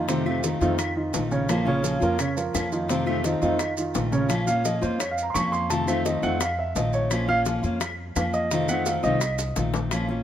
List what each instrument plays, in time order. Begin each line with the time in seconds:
Already playing: upright bass F2
0.08 steel-string acoustic guitar C3 D#3 A3 C4 F4, grand piano C3 C4 C5, high bongo, maracas
0.26 steel-string acoustic guitar D#3 A3 C4 F4, high bongo, claves
0.43 steel-string acoustic guitar D#3 A3 C4 F4, grand piano D#3 D#4 F4, high bongo, maracas
0.60 upright bass F2, grand piano D#3 D#4 F4, steel-string acoustic guitar D#3 A3 C4 F4, high bongo, maracas
0.78 muted steel-string acoustic guitar stroke, high bongo, claves, maracas
0.96 grand piano D#3 D#4 F4
1.13 upright bass A#1, steel-string acoustic guitar D#3 A3 C4 F4, high bongo, low bongo, maracas
1.31 grand piano C#3 C#4 C#5, high bongo, maracas
1.48 steel-string acoustic guitar F3 A#3 C#4 F4, grand piano F3 F4 A#4, high bongo, claves, maracas
1.65 grand piano C#3 C#4 C#5, steel-string acoustic guitar A#3 C#4 F4, high bongo
1.82 steel-string acoustic guitar F3 A#3 C#4 F4, high bongo, maracas
2.00 upright bass F2, grand piano F3 F4 A#4, steel-string acoustic guitar A#3 C#4 F4, high bongo, maracas
2.18 grand piano C#3 C#4 C#5, muted steel-string acoustic guitar stroke, high bongo, claves, maracas
2.37 grand piano F3 F4 A#4, maracas
2.53 upright bass F2, steel-string acoustic guitar F3 A#3 C#4 F4, high bongo, low bongo, claves, maracas
2.72 grand piano D#3 D#4 F4, high bongo, maracas
2.88 steel-string acoustic guitar C3 D#3 A3 C4 F4, grand piano C3 C4 C5, high bongo, maracas
3.06 steel-string acoustic guitar D#3 A3 C4 F4, high bongo, claves
3.23 steel-string acoustic guitar D#3 A3 C4 F4, grand piano D#3 D#4 F4, high bongo, maracas
3.42 upright bass F2, grand piano D#3 D#4 F4, steel-string acoustic guitar D#3 A3 C4 F4, high bongo, maracas
3.59 muted steel-string acoustic guitar stroke, high bongo, claves, maracas
3.77 grand piano D#3 D#4 F4, maracas
3.93 upright bass A#1, steel-string acoustic guitar D#3 A3 C4 F4, high bongo, low bongo, maracas
4.12 grand piano C#3 C#4 C#5, high bongo, maracas
4.29 steel-string acoustic guitar F3 A#3 C#4 F4, high bongo, claves, maracas
4.47 steel-string acoustic guitar A#3 C#4 F4, grand piano F5, high bongo, maracas
4.64 steel-string acoustic guitar F3 A#3 C#4 F4, grand piano D#5, high bongo, maracas
4.81 upright bass F2, steel-string acoustic guitar A#3 C#4 F4, grand piano C5, high bongo, maracas
4.99 grand piano C#5, muted steel-string acoustic guitar stroke, high bongo, claves, maracas
5.11 grand piano F5
5.18 maracas
5.23 grand piano A#5
5.30 grand piano C6
5.34 upright bass F2, steel-string acoustic guitar F3 A#3 C#4 F4, grand piano C#6, high bongo, low bongo, claves, maracas
5.52 grand piano C6, high bongo, maracas
5.70 steel-string acoustic guitar C3 D#3 A3 C4 F4, grand piano A5, high bongo, maracas
5.87 steel-string acoustic guitar D#3 A3 C4 F4, grand piano C5, high bongo, claves, maracas
6.05 steel-string acoustic guitar D#3 A3 C4 F4, grand piano D#5, high bongo, maracas
6.22 upright bass F2, steel-string acoustic guitar D#3 A3 C4 F4, grand piano F#5, high bongo, maracas
6.40 grand piano F5, muted steel-string acoustic guitar stroke, high bongo, claves, maracas
6.59 grand piano E5
6.75 upright bass A#1, steel-string acoustic guitar D#3 A3 C4 F4, grand piano D#5, high bongo, low bongo, maracas
6.93 grand piano C#5, high bongo, maracas
7.10 steel-string acoustic guitar F3 A#3 C#4 F4, grand piano C5, high bongo, claves, maracas
7.28 steel-string acoustic guitar A#3 C#4 F4, grand piano F5, high bongo
7.45 steel-string acoustic guitar F3 A#3 C#4 F4, high bongo, maracas
7.63 upright bass F2, steel-string acoustic guitar A#3 C#4 F4, high bongo, maracas
7.80 muted steel-string acoustic guitar stroke, high bongo, claves, maracas
8.15 upright bass F2, steel-string acoustic guitar F3 A#3 C#4 F4, grand piano F5, high bongo, low bongo, claves, maracas
8.33 grand piano D#5, high bongo, maracas
8.51 steel-string acoustic guitar C3 D#3 A3 C4 F4, high bongo, maracas
8.69 steel-string acoustic guitar D#3 A3 C4 F4, grand piano F#5, high bongo, claves, maracas
8.86 steel-string acoustic guitar D#3 A3 C4 F4, grand piano F5, high bongo, maracas
9.03 upright bass C2, steel-string acoustic guitar D#3 A3 C4 F4, grand piano D#5, high bongo, maracas
9.21 muted steel-string acoustic guitar stroke, high bongo, claves, maracas
9.38 high bongo, maracas
9.56 upright bass A#1, steel-string acoustic guitar D#3 A3 C4 F4, low bongo, maracas
9.74 low bongo, maracas
9.91 steel-string acoustic guitar F3 A#3 C#4 F4, high bongo, claves, maracas
10.08 steel-string acoustic guitar A#3 C#4 F4, high bongo